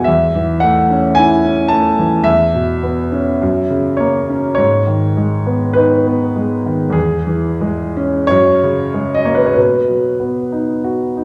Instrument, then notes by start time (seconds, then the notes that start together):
grand piano
0.04 E2 E5
0.35 E3
0.60 A3 F#5
0.90 C#4
1.15 E4 G#5
1.45 C#4
1.68 A3 A5
1.99 E3
2.23 E2 E5
2.54 B2
2.83 B3
3.12 C#4
3.42 F#2
3.70 C#3
3.97 A#3 C#5
4.29 C#4
4.55 G#2 C#5
4.87 D#3
5.17 G#3
5.47 B3
5.73 D#4 B4
6.07 B3
6.36 G#3
6.66 D#3
6.90 E2 G#4
7.27 E3
7.61 G#3
7.97 C#4
8.27 F#2 C#5
8.63 C#3
8.94 G#3
9.14 D#5
9.25 A#3 C#5
9.35 B4
9.46 C#5
9.54 B2 B4
9.88 F#3
10.20 B3
10.52 D#4
10.84 F#4
11.17 D#4